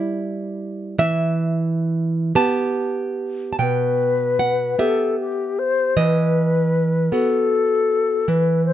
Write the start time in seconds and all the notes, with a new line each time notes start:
Already playing: G3 E4
0.98 E3 E5
2.35 B3 G4 A5
3.53 A5
3.59 B2 B4 G5
4.39 F#5
4.79 B3 G4 A4 E5
5.20 G4
5.59 C5
5.97 E3 B4 D#5
7.12 B3 F#4 A4
8.28 E3 B4
8.66 C5